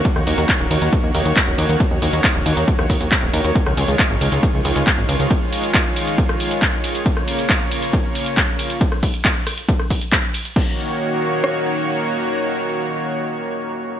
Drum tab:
CC |----------------|----------------|----------------|----------------|
RD |--x---x---x---x-|--x---x---x---x-|--x---x---x---x-|--x---x---x---x-|
HH |x-oxx-oxx-oxx-ox|x-oxx-oxx-oxx-ox|x-oxx-oxx-oxx-ox|x-oxx-oxx-oxx-ox|
SH |x-xxx-xxx-xxx-xx|x-xxx-xxx-xxx-xx|x-xxx-xxx-xxx-xx|x-xxx-xxx-xxx-xx|
CP |----x-------x---|----x-------x---|----x-------x---|----x-------x---|
SD |-r--------------|---------r------|-r--------------|---------r------|
BD |o---o---o---o---|o---o---o-o-o---|o---o---o---o---|o---o---o---o---|

CC |----------------|----------------|x---------------|----------------|
RD |--x---x---x---x-|--x---x---x---x-|----------------|----------------|
HH |x-oxx-oxx-oxx-ox|x-oxx-oxx-oxx-ox|----------------|----------------|
SH |x-xxx-xxx-xxx-xx|x-xxx-xxx-xxx-xx|----------------|----------------|
CP |----x-------x---|----x-------x---|----------------|----------------|
SD |-r--------------|-r----r--r------|--------r-------|----------------|
BD |o---o---o---o---|o-o-o---o-o-o---|o---------------|----------------|